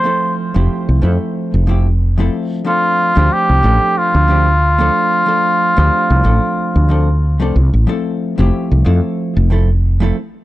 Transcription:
X:1
M:4/4
L:1/16
Q:"Swing 16ths" 1/4=92
K:F
V:1 name="Muted trumpet"
c2 z12 z2 | F4 G4 F8- | F12 z4 | z16 |]
V:2 name="Hollow-body jazz guitar"
[F,A,CEA]3 [F,A,CEG]3 [F,A,CEA]4 [F,A,CEG] z2 [F,A,CEA]3 | [F,A,CDA]3 [F,A,CDG]3 [F,A,CDA]4 [F,A,CDG] z2 [F,A,CDA]3 | [F,A,CDA]3 [F,A,CDG]3 [F,A,CDA]4 [F,A,CDA] z2 [F,A,CDA] z2 | [F,A,CEA]3 [F,A,CEG]3 [F,A,CEA]4 [F,A,CEA] z2 [F,A,CEA] z2 |]
V:3 name="Fretless electric bass" clef=bass
z3 F,,, z C,, F,, z2 F,,,4- F,,, z2 | z3 D,, z C,, A,,, z2 D,,4- D,, z2 | z3 D,, z C,, A,,, z2 D,,4 C,, C,, A,,, | z3 F,,, z C,, F,, z2 F,,,4- F,,, z2 |]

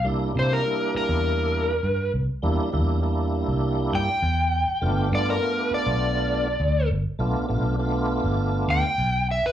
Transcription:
X:1
M:4/4
L:1/16
Q:1/4=101
K:Gmix
V:1 name="Electric slide guitar"
z2 c _B3 B8 z2 | z8 z2 g6- | g2 d _B3 d8 z2 | z8 z2 g4 e B |]
V:2 name="Tonewheel organ"
[G,_B,DE]2 [G,B,DE]2 [G,B,DE]8 z4 | [G,_B,DE]2 [G,B,DE]2 [G,B,DE]8 z4 | [A,B,DF]2 [A,B,DF]2 [A,B,DF]8 z4 | [A,B,DF]2 [A,B,DF]2 [A,B,DF]8 z4 |]
V:3 name="Fingered electric bass" clef=bass
C,,2 C,2 z3 E,,4- E,, G,,2 C,, z | E,, z E,,4- E,, C,,3 G,, z E,,3 z | G,,,2 G,,2 z3 B,,,4- B,,, D,,2 G,,, z | B,,, z B,,,4- B,,, G,,,3 D,, z B,,,3 z |]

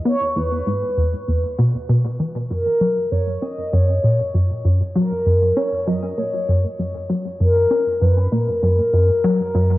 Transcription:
X:1
M:4/4
L:1/8
Q:1/4=98
K:F#mix
V:1 name="Soft synth lead"
c B4 z3 | A2 c d c3 z | A2 c d c3 z | A2 B A4- A |]
V:2 name="Analog synth bass" clef=bass
B, E,, G,, E,, E,, B,, B,, E, | F,, F, F,, C F,, A,, F,, F,, | F, F,, C F,, A,, F,, F,, F, | F,, C F,, A,, F,, F,, F, F,, |]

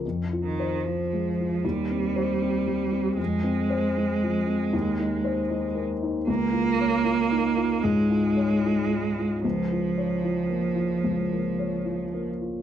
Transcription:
X:1
M:4/4
L:1/8
Q:1/4=76
K:Fm
V:1 name="Grand piano"
(3F,, F c (3F A, F (3E,, C c (3C G, C | (3F,, C c (3C F, C (3E,, E c (3E B, E | (3D,, F d (3F E F (3A,, F d (3F E F | (3D,, F d (3F B, F (3D,, B, d (3F B, F |]
V:2 name="Cello" clef=bass
z E, F,2 G,4 | A,6- A, z | B,4 A,4 | F,6- F, z |]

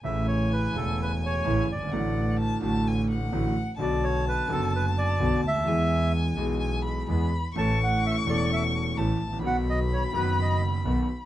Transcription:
X:1
M:4/4
L:1/16
Q:1/4=128
K:A
V:1 name="Violin"
g16 | f4 a2 a2 g2 f6 | a16 | g8 g2 b2 b4 |
c'12 a4 | b16 |]
V:2 name="Bandoneon"
e2 c2 B2 A2 B2 c4 d2- | d4 z12 | d2 c2 B2 A2 B2 d4 e2- | e4 z12 |
a2 f2 e2 d2 e2 z6 | f2 ^d2 c2 B2 d2 z6 |]
V:3 name="Grand piano" clef=bass
[A,,,A,,C,E,A,E]6 [E,,,E,,C,E,A,E]6 [A,,,A,,C,E,A,E]2 z/2 F,,,/2 =G,,,/2 ^G,,,/2 | [A,,,A,,D,F,A,F]6 [A,,,A,,D,F,A,F]6 [A,,,A,,D,F,A,F]2 z2 | [B,,,B,,D,F,B,F]6 [F,,,F,,D,F,B,F]6 [B,,,B,,D,F,B,F]2 z/2 C,,/2 D,,/2 ^D,,/2 | [E,,E,G,B,G]6 [B,,,B,,E,G,B,G]6 [E,,E,G,B,G]2 z2 |
[A,,,A,,E,A,CA]6 [E,,,E,,E,A,CA]6 [A,,,A,,E,A,CA]2 z/2 G,,,/2 A,,,/2 _B,,,/2 | [B,,,B,,^D,F,B,F]6 [F,,,F,,D,F,B,F]6 [B,,,B,,D,F,B,F]2 z2 |]
V:4 name="Double bass" clef=bass
A,,,6 E,,,6 A,,,2 =G,,,2 | A,,,6 A,,,6 A,,,2 z2 | B,,,6 F,,,6 B,,,2 D,,2 | E,,6 B,,,6 E,,2 z2 |
A,,,6 E,,,6 A,,,2 A,,,2 | B,,,6 F,,,6 B,,,2 z2 |]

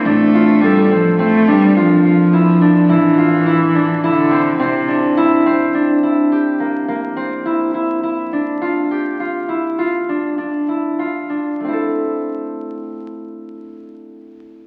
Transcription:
X:1
M:5/4
L:1/8
Q:1/4=105
K:Aphr
V:1 name="Harp"
D F A C C D F F E D | E F E D E C C D E C | D E G B, B, C E E E D | F G F E F D D E F D |
[A,CEA]8- [A,CEA]2 |]
V:2 name="Cello" clef=bass
A,2 G, F, A, G, F,4 | E,4 D,2 C,3 z | z8 z2 | z8 z2 |
z8 z2 |]
V:3 name="Upright bass" clef=bass
A,,,8- A,,,2 | A,,,8- A,,,2 | z8 z2 | z8 z2 |
z8 z2 |]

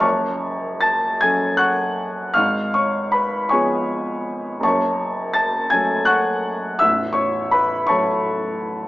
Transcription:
X:1
M:12/8
L:1/8
Q:3/8=54
K:F#m
V:1 name="Grand piano"
[cac']2 [aa'] [gg'] [fc'f']2 [^ec'^e'] [cc'] [Bb] [cgc']3 | [cac']2 [aa'] [gg'] [fc'f']2 [ee'] [cc'] [Bb] [cac']3 |]
V:2 name="Grand piano" clef=bass
[F,,,F,,]3 [F,CA]3 [G,,,G,,]3 [^E,B,G]3 | [F,,,F,,]3 [F,A,A]3 [A,,,,A,,,]3 [F,A,A]3 |]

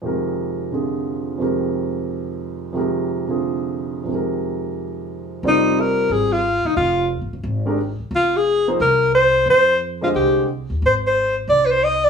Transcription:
X:1
M:4/4
L:1/16
Q:"Swing" 1/4=178
K:Fdor
V:1 name="Alto saxophone"
z16 | z16 | z16 | z16 |
E4 B4 A2 F4 E2 | F4 z12 | F2 A4 z2 B4 c4 | c4 z2 F2 G4 z4 |
c2 c4 z2 d3/2 =B/2 c2 e2 d2 |]
V:2 name="Grand piano" clef=bass
[F,,C,E,A,GB]8 [C,D,F,FA]8 | [F,,C,E,A,GB]16 | [F,,C,E,A,GB]6 [C,D,F,FA]8- [C,D,F,FA]2 | [F,,C,E,A,GB]16 |
[G,CFBd]8- [G,CFBd]2 z6 | z8 z2 [E,A,DGB]2 z4 | z6 [F,B,EAc]2 z8 | z6 [D,A,Gce]6 z4 |
z16 |]
V:3 name="Upright bass" clef=bass
z16 | z16 | z16 | z16 |
F,,,8 A,,,6 G,,,2 | F,,,4- (3F,,,2 G,,,2 _G,,,2 A,,,6 z2 | F,,,8 C,,8 | F,,8 C,,6 E,,2 |
A,,,8 C,,8 |]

